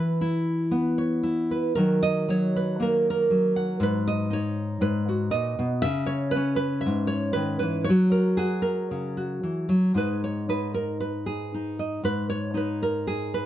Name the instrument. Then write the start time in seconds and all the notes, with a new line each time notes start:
nylon-string guitar
Already playing: E3 B4
0.21 E4
0.71 B3
0.98 C#5
1.23 E4
1.51 B4
1.75 D#3 F#3 F#4 A#4
2.03 D#5
2.28 F#3 C#5
2.56 B4
2.80 A#3 A#4
3.10 A#4
3.30 F#3
3.56 F#5
3.80 G#2 B4
4.07 D#5
4.30 D#4 C#5
4.81 G#2 B4
5.09 F#4
5.31 A#2 D#5
5.59 B2
5.82 C#3 E5
6.06 C#5
6.31 B4
6.36 C#4
6.56 B4
6.81 E5
6.86 G#2
7.07 C#5
7.33 D#3 B4
7.59 E3 B4
7.84 C#5
7.89 F#3 F#4
8.12 A#4
8.37 F#4 G#4
8.62 A#4
8.91 C#3
9.17 F#4
9.43 E3
9.69 F#3
9.94 G#2 D#4 G#4 B4
10.24 C#5
10.49 D#4 B4
10.74 A#4
11.00 B4
11.26 G#4
11.54 D#4
11.79 D#5
12.03 G#2 B4
12.30 C#5
12.54 D#4 B4
12.83 A#4
13.07 G#4
13.34 B4